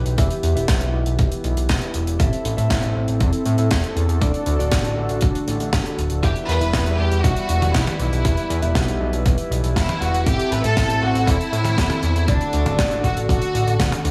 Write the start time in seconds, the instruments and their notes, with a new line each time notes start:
Already playing: analog synth pad E3 E4 G4 B4, clean electric guitar B3 E4 G4 E5
0.05 analog synth bass B1, closed hi-hat
0.18 analog synth bass E2, clean electric guitar B3 E4 G4 E5, kick, closed hi-hat
0.30 closed hi-hat
0.43 analog synth bass E2, closed hi-hat
0.56 analog synth bass E1, clean electric guitar B3 E4 G4 E5, closed hi-hat
0.68 analog synth bass B1, kick, snare, closed hi-hat
0.81 analog synth bass B1, closed hi-hat
0.94 analog synth bass B1
1.06 analog synth bass B1, closed hi-hat
1.19 analog synth bass B1, kick, closed hi-hat
1.32 closed hi-hat
1.44 analog synth bass B1, closed hi-hat
1.57 analog synth bass B1, closed hi-hat
1.69 analog synth bass E1, kick, snare, closed hi-hat
1.81 closed hi-hat
1.94 analog synth bass E1, closed hi-hat
2.07 analog synth bass E1, closed hi-hat
2.19 analog synth bass A1, clean electric guitar C4 E4 A4 E5, analog synth pad C4 A4, kick, closed hi-hat
2.33 closed hi-hat
2.45 analog synth bass A1, closed hi-hat
2.57 analog synth bass A2, clean electric guitar C4 E4 A4 E5, closed hi-hat
2.70 analog synth bass A1, kick, snare, closed hi-hat
2.83 analog synth bass A1, closed hi-hat
2.96 analog synth bass A1
3.08 analog synth bass A1, closed hi-hat
3.20 analog synth bass E2, kick, closed hi-hat
3.33 closed hi-hat
3.46 analog synth bass A2, closed hi-hat
3.58 analog synth bass A2, closed hi-hat
3.71 analog synth bass E2, kick, snare, closed hi-hat
3.84 closed hi-hat
3.96 analog synth bass E2, closed hi-hat
4.09 analog synth bass E2, closed hi-hat
4.21 analog synth bass D2, analog synth pad D3 D4 F#4, clean electric guitar A3 D4 F#4 D5, kick, closed hi-hat
4.34 closed hi-hat
4.46 analog synth bass D2, closed hi-hat
4.59 analog synth bass D1, clean electric guitar A3 D4 F#4 D5, closed hi-hat
4.71 analog synth bass A1, kick, snare, closed hi-hat
4.84 analog synth bass A1, closed hi-hat
4.97 analog synth bass A1
5.09 analog synth bass A1, closed hi-hat
5.21 analog synth bass A1, kick, closed hi-hat
5.35 closed hi-hat
5.48 analog synth bass A1, closed hi-hat
5.60 analog synth bass A1, closed hi-hat
5.73 analog synth bass D1, kick, snare, closed hi-hat
5.86 closed hi-hat
5.98 analog synth bass D1, closed hi-hat
6.10 analog synth bass D1, closed hi-hat
6.23 analog synth bass E2, analog synth pad E3 G3 E4 B4, clean electric guitar B3 E4 G4 E5, violin section G4, kick, closed hi-hat
6.36 closed hi-hat
6.48 analog synth bass E2, violin section B4, closed hi-hat
6.61 analog synth bass E1, clean electric guitar G3 B3 E4 E5, closed hi-hat
6.73 analog synth bass E2, kick, snare, closed hi-hat
6.86 analog synth bass E2, closed hi-hat
6.99 analog synth bass E2, violin section G4
7.11 analog synth bass E2, closed hi-hat
7.24 analog synth bass B1, violin section F#4, kick, closed hi-hat
7.36 closed hi-hat
7.49 analog synth bass E1, closed hi-hat
7.62 analog synth bass E1, closed hi-hat, high tom
7.74 analog synth bass B1, violin section E4, kick, snare, closed hi-hat
7.87 closed hi-hat, high tom
7.99 analog synth bass B1, violin section E4, closed hi-hat
8.12 analog synth bass B1, closed hi-hat
8.25 analog synth bass E2, clean electric guitar B3 E4 G4 E5, kick, closed hi-hat
8.37 closed hi-hat
8.50 analog synth bass E2, closed hi-hat
8.62 analog synth bass E1, clean electric guitar B3 E4 G4 E5, closed hi-hat
8.75 analog synth bass B1, kick, snare, closed hi-hat
8.88 analog synth bass B1, closed hi-hat
9.01 analog synth bass B1
9.13 analog synth bass B1, closed hi-hat
9.26 analog synth bass B1, kick, closed hi-hat
9.38 closed hi-hat
9.51 analog synth bass B1, closed hi-hat
9.63 analog synth bass B1, closed hi-hat
9.76 analog synth bass E1, violin section E4, kick, snare, closed hi-hat
9.89 closed hi-hat, high tom
10.01 analog synth bass E1, violin section F#4, closed hi-hat
10.14 analog synth bass E1, closed hi-hat
10.26 analog synth bass A1, clean electric guitar C4 E4 A4 E5, analog synth pad C4 A4, violin section G4, kick, closed hi-hat
10.39 closed hi-hat
10.52 analog synth bass A1, violin section B4, closed hi-hat
10.64 analog synth bass A2, clean electric guitar C4 E4 A4 E5, violin section A4, closed hi-hat
10.77 analog synth bass A1, kick, snare, closed hi-hat
10.90 analog synth bass A1, closed hi-hat
11.02 analog synth bass A1, violin section F#4
11.15 analog synth bass A1, closed hi-hat
11.27 analog synth bass E2, violin section E4, kick, closed hi-hat
11.41 closed hi-hat
11.53 analog synth bass A2, closed hi-hat
11.65 analog synth bass A2, closed hi-hat, high tom
11.78 analog synth bass E2, kick, snare, closed hi-hat
11.90 closed hi-hat, high tom
12.03 analog synth bass E2, closed hi-hat
12.15 analog synth bass E2, closed hi-hat
12.28 analog synth bass D2, analog synth pad D3 D4 F#4 A4, clean electric guitar A3 D4 F#4 D5, violin section D4, kick, closed hi-hat
12.41 closed hi-hat
12.53 analog synth bass D2, closed hi-hat
12.66 analog synth bass D1, clean electric guitar A3 D4 F#4 D5, closed hi-hat, high tom
12.79 analog synth bass A1, kick, snare, closed hi-hat
12.91 analog synth bass A1, closed hi-hat
13.04 analog synth bass A1, violin section F#4, kick, closed hi-hat
13.17 analog synth bass A1, closed hi-hat
13.29 analog synth bass A1, violin section F#4, kick, closed hi-hat
13.42 closed hi-hat
13.54 analog synth bass A1, closed hi-hat
13.67 analog synth bass A1, closed hi-hat
13.80 analog synth bass D2, kick, snare, closed hi-hat
13.92 closed hi-hat, high tom
14.05 analog synth bass D2, closed hi-hat